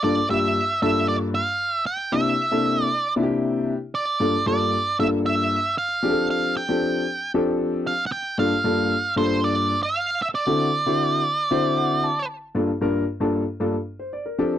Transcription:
0.03 grand piano G2 A#3 D4 F4 A4, lead electric guitar D5
0.29 grand piano G2 A#3 D4 F4 G4, lead electric guitar E5
0.82 grand piano G2 A#3 D4 F4 A4, lead electric guitar E5
1.08 lead electric guitar D5
1.35 lead electric guitar F5
1.74 lead electric guitar E5
1.86 lead electric guitar G5
2.12 grand piano C3 A#3 D4 E4 G4, lead electric guitar E5
2.51 grand piano C3 A#3 D4 E4 A4
2.82 lead electric guitar D5
3.16 grand piano C3 A#3 D4 E4 F4
3.23 grand piano G4
3.95 lead electric guitar D5
4.20 grand piano G2 A#3 D4 F4 A4
4.46 grand piano G2 A#3 D4 F4 A4, lead electric guitar D5
4.99 grand piano G2 A#3 D4 F4 A4, lead electric guitar E5
5.26 lead electric guitar E5
5.78 lead electric guitar F5
6.03 grand piano F3 C4 D4 G4 G#4
6.10 grand piano A4
6.30 lead electric guitar F5
6.57 lead electric guitar G5
6.69 grand piano F3 C4 D4 G4 A4
7.34 grand piano F3 C4 D4 G4 A4
7.87 lead electric guitar F5
8.07 lead electric guitar F#5
8.12 lead electric guitar G5
8.38 grand piano G2 A#3 D4 F4 A4, lead electric guitar F5
8.64 grand piano G2 A#3 D4 F4 A4
9.16 grand piano G2 A#3 D4 F4 A4, lead electric guitar C5
9.44 lead electric guitar D5
9.83 lead electric guitar F5
10.22 lead electric guitar E5
10.35 lead electric guitar D5
10.46 grand piano D3 C4 E4 F#4 A4
10.86 grand piano D3 C4 E4 F#4 C5
11.51 grand piano D3 C4 E4 F#4 C5
11.78 grand piano F#5
12.04 grand piano A5
12.55 grand piano G2 A#3 D4 F4 A4
12.81 grand piano G2 A#3 D4 F4 A#4
13.20 grand piano G2 A#3 D4 F4 A4
13.60 grand piano G2 A#3 D4 F4 A4
13.99 grand piano C5
14.13 grand piano D5
14.26 grand piano A#4
14.38 grand piano F3 C4 D4 G4 A4

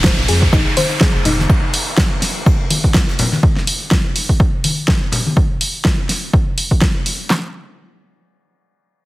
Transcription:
Already playing: analog synth bass D#1, downlifter
0.04 synth arpeggio sound C5, kick, snare, ride
0.18 analog synth bass A#1
0.28 analog synth bass F2, synth arpeggio sound G#4, open hi-hat, ride
0.42 kick
0.53 analog synth bass A#1, synth arpeggio sound D#4, kick, ride
0.77 synth arpeggio sound C5, open hi-hat, high conga
0.91 ride
1.01 synth arpeggio sound G#4, kick, snare, ride
1.15 analog synth bass F1
1.25 synth arpeggio sound D#4, open hi-hat, ride, low conga
1.39 snare, high conga
1.50 kick, ride
1.73 open hi-hat, ride
1.97 kick, snare, ride
2.22 snare, open hi-hat, ride
2.46 kick, ride
2.70 open hi-hat, ride, high conga
2.84 kick
2.94 kick, snare, ride
3.09 snare
3.18 open hi-hat, ride, low conga
3.32 snare, high conga
3.43 kick
3.56 snare
3.67 open hi-hat
3.91 kick, snare
4.16 open hi-hat
4.29 kick
4.40 kick
4.64 open hi-hat, high conga
4.88 kick, snare
5.12 open hi-hat, low conga
5.26 high conga
5.37 kick
5.61 open hi-hat
5.85 kick, snare
6.09 snare, open hi-hat
6.33 kick
6.58 open hi-hat
6.71 kick
6.81 kick, snare
7.06 open hi-hat
7.30 snare, clap

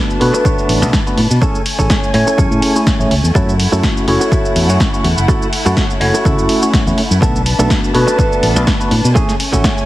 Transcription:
Already playing: tine electric piano A3 B3 D4 F#4 B4, violin section D4 B4 A5
0.10 cabasa
0.20 fingered electric bass B2, tine electric piano A3 B3 D4 F#4 B4, muted clean electric guitar stroke, open hi-hat
0.34 muted clean electric guitar stroke, cabasa
0.45 clean electric guitar D4 A4 C#5, kick, cabasa
0.58 cabasa
0.69 fingered electric bass A1, open hi-hat
0.82 fingered electric bass B1, tine electric piano A3 B3 D4 F#4 B4, cabasa
0.93 kick, snare, cabasa
1.06 tine electric piano A3 B3 D4 F#4 B4, cabasa
1.17 fingered electric bass A2, muted clean electric guitar stroke, open hi-hat
1.31 fingered electric bass B2, cabasa
1.41 tine electric piano A3 C#4 E4 G#4 C#5, violin section A3 C#4 G#5, clean electric guitar C#4 G#4 A4, kick, cabasa
1.55 cabasa
1.66 open hi-hat
1.79 fingered electric bass A1, tine electric piano A3 C#4 E4 C#5 G#5, clean electric guitar C#4 G#4 A4, kick, cabasa
1.90 kick, snare, cabasa
2.03 cabasa
2.14 fingered electric bass A2, tine electric piano A3 C#4 E4 C#5 G#5, muted clean electric guitar stroke, open hi-hat
2.27 muted clean electric guitar stroke, cabasa
2.38 fingered electric bass F#2, clean electric guitar C#4 G#4 A4, kick, cabasa
2.51 fingered electric bass A2, cabasa
2.62 open hi-hat
2.75 tine electric piano A3 C#4 E4 G#4 C#5, cabasa
2.87 kick, snare, cabasa
2.99 fingered electric bass A1, tine electric piano A3 C#4 E4 G#4 C#5, cabasa
3.11 fingered electric bass C#2, muted clean electric guitar stroke, open hi-hat
3.24 fingered electric bass E2, cabasa
3.35 fingered electric bass F#2, tine electric piano A3 C#4 E4 F#4 C#5, clean electric guitar E4 F#4 A4, violin section E4 F#5, kick, cabasa
3.49 cabasa
3.60 open hi-hat
3.72 fingered electric bass F#2, tine electric piano A3 C#4 E4 F#4 C#5, clean electric guitar E4 F#4 A4, cabasa
3.83 kick, snare, cabasa
3.97 cabasa
4.08 fingered electric bass F#1, tine electric piano A3 C#4 E4 F#4 C#5, muted clean electric guitar stroke, open hi-hat
4.21 muted clean electric guitar stroke, cabasa
4.32 clean electric guitar E4 F#4 A4, kick, cabasa
4.45 cabasa
4.56 fingered electric bass E2, open hi-hat
4.69 fingered electric bass F#2, tine electric piano A3 C#4 E4 F#4 C#5, cabasa
4.80 kick, snare, cabasa
4.93 tine electric piano A3 C#4 E4 F#4 C#5, cabasa
5.04 fingered electric bass E2, muted clean electric guitar stroke, open hi-hat
5.17 fingered electric bass F#1, cabasa
5.28 tine electric piano A3 C#4 E4 F#4 C#5, clean electric guitar E4 F#4 A4, kick, cabasa
5.42 cabasa
5.53 open hi-hat
5.65 fingered electric bass F#2, tine electric piano A3 C#4 E4 F#4 C#5, clean electric guitar E4 F#4 A4, cabasa
5.77 kick, snare, cabasa
5.90 cabasa
6.00 fingered electric bass F#1, tine electric piano A3 C#4 E4 F#4 C#5, muted clean electric guitar stroke, open hi-hat
6.14 muted clean electric guitar stroke, cabasa
6.25 fingered electric bass C#3, clean electric guitar E4 F#4 A4, kick, cabasa
6.38 fingered electric bass F#1, cabasa
6.49 open hi-hat
6.62 tine electric piano A3 C#4 E4 F#4 C#5, cabasa
6.73 kick, snare, cabasa
6.86 fingered electric bass E2, tine electric piano A3 C#4 E4 F#4 C#5, cabasa
6.97 muted clean electric guitar stroke, muted fingered electric bass stroke, open hi-hat
7.11 fingered electric bass F#2, cabasa
7.21 fingered electric bass B1, tine electric piano A3 B3 D4 F#4 B4, clean electric guitar B3 D4 A4, violin section D4 B4 A5, kick, cabasa
7.36 cabasa
7.46 open hi-hat
7.59 fingered electric bass B1, tine electric piano A3 B3 D4 F#4 B4, clean electric guitar B3 D4 A4, cabasa
7.70 kick, snare, cabasa
7.84 cabasa
7.94 fingered electric bass B2, tine electric piano A3 B3 D4 F#4 B4, muted clean electric guitar stroke, open hi-hat
8.07 muted clean electric guitar stroke, cabasa
8.18 clean electric guitar B3 D4 A4, kick, cabasa
8.32 cabasa
8.43 fingered electric bass A1, open hi-hat
8.56 fingered electric bass B1, tine electric piano A3 B3 D4 F#4 B4, cabasa
8.67 kick, snare, cabasa
8.80 tine electric piano A3 B3 D4 F#4 B4, cabasa
8.91 fingered electric bass A2, muted clean electric guitar stroke, open hi-hat
9.04 fingered electric bass B2, cabasa
9.15 clean electric guitar A3 C#4 G#4, violin section A3 C#4 G#5, tine electric piano A3 C#4 E4 G#4 C#5, kick, cabasa
9.29 snare, cabasa
9.40 open hi-hat
9.53 fingered electric bass A1, clean electric guitar A3 C#4 F#4, tine electric piano A3 C#4 E4 G#4 C#5, kick, cabasa
9.64 kick, snare, cabasa
9.78 cabasa

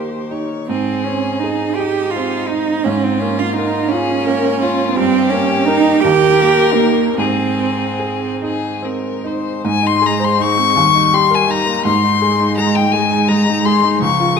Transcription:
Already playing: grand piano D#2 A#3 D#4 A#4, cello G4, violin C5
0.30 grand piano D#4, violin C#5
0.67 grand piano G#2, cello C4
0.71 violin G#4
1.04 grand piano C4, cello C#4
1.40 cello D#4, grand piano G#4
1.75 cello G4
1.80 grand piano D#4, violin D#4
2.11 cello F4
2.16 grand piano C4
2.48 cello D#4, grand piano D#4
2.84 grand piano G#2, cello C#4, violin F4
3.04 cello C4
3.20 grand piano A#3, cello C#4
3.39 cello F4
3.53 cello D#4
3.58 grand piano A#4
3.88 cello C#4, grand piano F4, violin G#4
4.26 grand piano A#3, violin A#4
4.61 violin F4, grand piano F4
4.93 grand piano G2, cello C4, violin G4
5.30 grand piano A#3, cello C#4
5.65 cello D#4, grand piano D#4 A#4
6.00 cello G4, violin A#4
6.04 grand piano D#2
6.40 grand piano A#3
6.75 cello A#3, grand piano D#4 A#4
7.18 grand piano G#2, cello C4, violin G#4
7.59 grand piano C4
7.99 grand piano G#4
8.42 grand piano D#4, violin G#4
8.82 grand piano C4, violin A#4
9.24 grand piano D#4, violin C5
9.63 grand piano G#2, cello G#3, violin G#5
9.82 grand piano D#4
9.86 violin C6
10.01 grand piano G#4
10.06 violin A#5
10.19 grand piano C5
10.24 violin C6
10.39 grand piano D#4, violin C#6
10.57 grand piano C4
10.76 grand piano D#2, cello G3
10.95 grand piano D#4
11.13 grand piano G4, violin C6
11.31 grand piano A#4, violin G#5
11.48 grand piano D#4, violin A#5
11.66 grand piano A#3
11.84 grand piano G#2, cello G#3, violin C6
12.03 grand piano D#4
12.22 grand piano G#4
12.40 grand piano D#4
12.57 grand piano G#3, violin A#5
12.74 grand piano D#4, violin G5
12.92 cello G#3, grand piano G#4, violin G#5
13.11 grand piano D#4
13.28 grand piano G#3, violin A#5
13.48 grand piano D#4
13.65 grand piano G#4, violin C6
13.83 grand piano D#4
13.98 grand piano C#2, cello F3
14.02 violin C#6
14.20 grand piano F4
14.36 grand piano G#4, violin D#6

